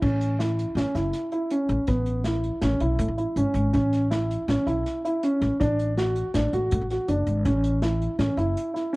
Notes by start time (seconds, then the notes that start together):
0.02 A1 C#4, kick, crash
0.21 closed hi-hat
0.39 E4, snare, closed hi-hat
0.59 closed hi-hat
0.75 A1 C#4, snare, closed hi-hat
0.95 F#1 E4, snare, closed hi-hat
1.13 snare, closed hi-hat
1.32 E4, closed hi-hat
1.50 C#4, closed hi-hat
1.69 A1, closed hi-hat
1.87 A1 B3, kick, closed hi-hat
2.06 closed hi-hat
2.24 E4, snare, closed hi-hat
2.44 closed hi-hat
2.62 A1 C#4, snare, closed hi-hat
2.80 B1 E4, closed hi-hat
2.99 A2, closed hi-hat
3.08 A1
3.18 E4, closed hi-hat
3.36 G#1 C#4, closed hi-hat
3.54 G#1, closed hi-hat
3.73 A1 C#4, kick, closed hi-hat
3.93 snare, closed hi-hat
4.11 E4, snare, closed hi-hat
4.31 closed hi-hat
4.48 A1 C#4, snare, closed hi-hat
4.66 B1 E4, closed hi-hat
4.86 snare, closed hi-hat
5.05 E4, closed hi-hat
5.23 C#4, closed hi-hat
5.42 A1, snare, closed hi-hat
5.60 A1 D4, kick, closed hi-hat
5.79 closed hi-hat
5.97 F#4, snare, closed hi-hat
6.16 closed hi-hat
6.34 A1 D4, snare, closed hi-hat
6.53 A1 F#4, closed hi-hat
6.71 A2, closed hi-hat
6.81 A1
6.90 F#4, snare, closed hi-hat
7.08 F#1 D4, closed hi-hat
7.27 G#1, closed hi-hat
7.45 A1 C#4, kick, closed hi-hat
7.64 closed hi-hat
7.82 E4, snare, closed hi-hat
8.02 closed hi-hat
8.19 A1 C#4, snare, closed hi-hat
8.37 F#1 E4, closed hi-hat
8.57 closed hi-hat
8.74 E4, snare, closed hi-hat
8.93 C#4